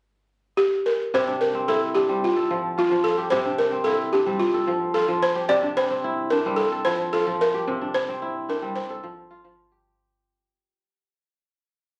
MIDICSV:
0, 0, Header, 1, 3, 480
1, 0, Start_track
1, 0, Tempo, 545455
1, 1000, Time_signature, 4, 2, 24, 8
1, 10558, End_track
2, 0, Start_track
2, 0, Title_t, "Balafon"
2, 0, Program_c, 0, 12
2, 504, Note_on_c, 0, 67, 72
2, 735, Note_off_c, 0, 67, 0
2, 757, Note_on_c, 0, 70, 72
2, 1006, Note_off_c, 0, 70, 0
2, 1008, Note_on_c, 0, 72, 81
2, 1239, Note_on_c, 0, 70, 80
2, 1252, Note_off_c, 0, 72, 0
2, 1480, Note_on_c, 0, 69, 80
2, 1488, Note_off_c, 0, 70, 0
2, 1704, Note_off_c, 0, 69, 0
2, 1712, Note_on_c, 0, 67, 75
2, 1940, Note_off_c, 0, 67, 0
2, 1973, Note_on_c, 0, 65, 77
2, 2414, Note_off_c, 0, 65, 0
2, 2451, Note_on_c, 0, 65, 76
2, 2557, Note_off_c, 0, 65, 0
2, 2675, Note_on_c, 0, 69, 75
2, 2785, Note_off_c, 0, 69, 0
2, 2907, Note_on_c, 0, 72, 91
2, 3137, Note_off_c, 0, 72, 0
2, 3155, Note_on_c, 0, 70, 82
2, 3264, Note_off_c, 0, 70, 0
2, 3381, Note_on_c, 0, 69, 83
2, 3632, Note_on_c, 0, 67, 73
2, 3638, Note_off_c, 0, 69, 0
2, 3867, Note_on_c, 0, 65, 81
2, 3883, Note_off_c, 0, 67, 0
2, 4349, Note_on_c, 0, 69, 78
2, 4367, Note_off_c, 0, 65, 0
2, 4459, Note_off_c, 0, 69, 0
2, 4598, Note_on_c, 0, 72, 90
2, 4831, Note_on_c, 0, 74, 96
2, 4845, Note_off_c, 0, 72, 0
2, 5077, Note_on_c, 0, 72, 97
2, 5081, Note_off_c, 0, 74, 0
2, 5522, Note_off_c, 0, 72, 0
2, 5548, Note_on_c, 0, 70, 88
2, 5776, Note_on_c, 0, 69, 84
2, 5798, Note_off_c, 0, 70, 0
2, 6007, Note_off_c, 0, 69, 0
2, 6026, Note_on_c, 0, 72, 85
2, 6273, Note_on_c, 0, 69, 77
2, 6277, Note_off_c, 0, 72, 0
2, 6520, Note_off_c, 0, 69, 0
2, 6522, Note_on_c, 0, 70, 83
2, 6991, Note_on_c, 0, 72, 83
2, 7011, Note_off_c, 0, 70, 0
2, 7438, Note_off_c, 0, 72, 0
2, 7476, Note_on_c, 0, 70, 74
2, 7704, Note_on_c, 0, 72, 74
2, 7721, Note_off_c, 0, 70, 0
2, 8393, Note_off_c, 0, 72, 0
2, 10558, End_track
3, 0, Start_track
3, 0, Title_t, "Kora"
3, 0, Program_c, 1, 46
3, 1002, Note_on_c, 1, 48, 76
3, 1004, Note_on_c, 1, 67, 66
3, 1121, Note_on_c, 1, 62, 56
3, 1359, Note_on_c, 1, 60, 52
3, 1485, Note_on_c, 1, 64, 68
3, 1717, Note_off_c, 1, 62, 0
3, 1721, Note_on_c, 1, 62, 54
3, 1837, Note_off_c, 1, 60, 0
3, 1839, Note_on_c, 1, 55, 60
3, 1841, Note_on_c, 1, 60, 52
3, 2006, Note_off_c, 1, 48, 0
3, 2006, Note_off_c, 1, 55, 0
3, 2078, Note_on_c, 1, 69, 55
3, 2204, Note_on_c, 1, 53, 66
3, 2247, Note_off_c, 1, 67, 0
3, 2257, Note_off_c, 1, 64, 0
3, 2443, Note_on_c, 1, 65, 59
3, 2551, Note_off_c, 1, 53, 0
3, 2562, Note_on_c, 1, 53, 63
3, 2797, Note_on_c, 1, 67, 56
3, 2917, Note_off_c, 1, 67, 0
3, 2920, Note_on_c, 1, 67, 71
3, 2921, Note_on_c, 1, 48, 80
3, 2966, Note_off_c, 1, 53, 0
3, 3034, Note_off_c, 1, 62, 0
3, 3037, Note_on_c, 1, 62, 57
3, 3238, Note_off_c, 1, 69, 0
3, 3270, Note_off_c, 1, 60, 0
3, 3273, Note_on_c, 1, 60, 55
3, 3399, Note_on_c, 1, 64, 66
3, 3452, Note_off_c, 1, 65, 0
3, 3630, Note_off_c, 1, 62, 0
3, 3633, Note_on_c, 1, 62, 53
3, 3748, Note_off_c, 1, 60, 0
3, 3751, Note_on_c, 1, 55, 62
3, 3751, Note_on_c, 1, 60, 51
3, 3924, Note_off_c, 1, 48, 0
3, 3924, Note_off_c, 1, 55, 0
3, 3993, Note_on_c, 1, 69, 56
3, 4113, Note_on_c, 1, 53, 71
3, 4163, Note_off_c, 1, 67, 0
3, 4166, Note_off_c, 1, 64, 0
3, 4353, Note_on_c, 1, 65, 60
3, 4461, Note_off_c, 1, 53, 0
3, 4472, Note_on_c, 1, 53, 73
3, 4711, Note_on_c, 1, 67, 59
3, 4823, Note_off_c, 1, 67, 0
3, 4827, Note_on_c, 1, 67, 73
3, 4829, Note_on_c, 1, 48, 80
3, 4882, Note_off_c, 1, 53, 0
3, 4948, Note_off_c, 1, 62, 0
3, 4952, Note_on_c, 1, 62, 60
3, 5153, Note_off_c, 1, 69, 0
3, 5192, Note_off_c, 1, 60, 0
3, 5196, Note_on_c, 1, 60, 53
3, 5316, Note_on_c, 1, 64, 69
3, 5369, Note_off_c, 1, 65, 0
3, 5557, Note_off_c, 1, 62, 0
3, 5561, Note_on_c, 1, 62, 55
3, 5679, Note_off_c, 1, 60, 0
3, 5683, Note_on_c, 1, 55, 62
3, 5683, Note_on_c, 1, 60, 59
3, 5839, Note_off_c, 1, 48, 0
3, 5839, Note_off_c, 1, 55, 0
3, 5915, Note_on_c, 1, 69, 57
3, 6039, Note_on_c, 1, 53, 64
3, 6070, Note_off_c, 1, 67, 0
3, 6091, Note_off_c, 1, 64, 0
3, 6276, Note_on_c, 1, 65, 58
3, 6385, Note_off_c, 1, 53, 0
3, 6396, Note_on_c, 1, 53, 67
3, 6636, Note_on_c, 1, 67, 60
3, 6754, Note_on_c, 1, 48, 79
3, 6797, Note_off_c, 1, 53, 0
3, 6873, Note_off_c, 1, 62, 0
3, 6876, Note_on_c, 1, 62, 53
3, 7074, Note_off_c, 1, 69, 0
3, 7112, Note_off_c, 1, 60, 0
3, 7116, Note_on_c, 1, 60, 58
3, 7233, Note_on_c, 1, 64, 65
3, 7286, Note_off_c, 1, 65, 0
3, 7465, Note_off_c, 1, 62, 0
3, 7469, Note_on_c, 1, 62, 52
3, 7586, Note_off_c, 1, 60, 0
3, 7586, Note_on_c, 1, 55, 58
3, 7590, Note_on_c, 1, 60, 52
3, 7756, Note_off_c, 1, 48, 0
3, 7756, Note_off_c, 1, 55, 0
3, 7833, Note_on_c, 1, 69, 55
3, 7879, Note_off_c, 1, 67, 0
3, 7950, Note_on_c, 1, 53, 66
3, 8003, Note_off_c, 1, 64, 0
3, 8189, Note_on_c, 1, 65, 63
3, 8301, Note_off_c, 1, 53, 0
3, 8311, Note_on_c, 1, 53, 63
3, 8550, Note_on_c, 1, 67, 57
3, 8716, Note_off_c, 1, 53, 0
3, 8947, Note_off_c, 1, 62, 0
3, 8993, Note_off_c, 1, 69, 0
3, 9174, Note_off_c, 1, 60, 0
3, 9521, Note_off_c, 1, 65, 0
3, 9793, Note_off_c, 1, 67, 0
3, 10558, End_track
0, 0, End_of_file